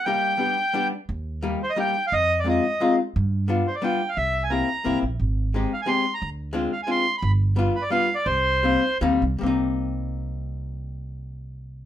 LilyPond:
<<
  \new Staff \with { instrumentName = "Accordion" } { \time 3/4 \key c \minor \tempo 4 = 174 g''2~ g''8 r8 | r4. c''16 ees''16 g''8. f''16 | ees''8. d''16 ees''4. r8 | r4. c''16 d''16 g''8. f''16 |
e''8. aes''16 bes''4. r8 | r4. f''16 aes''16 c'''8. bes''16~ | bes''16 r4 r16 f''16 aes''16 c'''8. b''16~ | b''16 r4 r16 b'16 d''16 \tuplet 3/2 { f''4 d''8 } |
c''2 r4 | r2. | r2. | }
  \new Staff \with { instrumentName = "Hollow-body jazz guitar" } { \time 3/4 \key c \minor <g bes ees' g'>4 <g b d' g'>8 r8 <g b d' g'>8 r8 | r4 <g bes ees' g'>8 r8 <g bes ees' g'>8 r8 | r4 <aes c' ees' f'>8 r8 <aes c' ees' f'>8 r8 | r4 <g b d' f'>8 r8 <g b d' f'>8 r8 |
r4 <bes c' e' g'>8 r8 <bes c' e' g'>8 r8 | r4 <aes c' ees' g'>8 r8 <aes c' ees' g'>8 r8 | r4 <aes c' d' f'>8 r8 <aes c' d' f'>8 r8 | r4 <g b d' f'>8 r8 <g b d' f'>8 r8 |
r4 <g bes c' ees'>8 r8 <g bes c' ees'>8 r8 | <g bes c' ees'>2.~ | <g bes c' ees'>2. | }
  \new Staff \with { instrumentName = "Upright bass" } { \clef bass \time 3/4 \key c \minor r2. | ees,2 r4 | f,2 r4 | g,2 r4 |
c,2 c,8 bes,,8 | aes,,2 r4 | d,2 r4 | g,,2 r4 |
c,2 d,8 c,8 | c,2.~ | c,2. | }
>>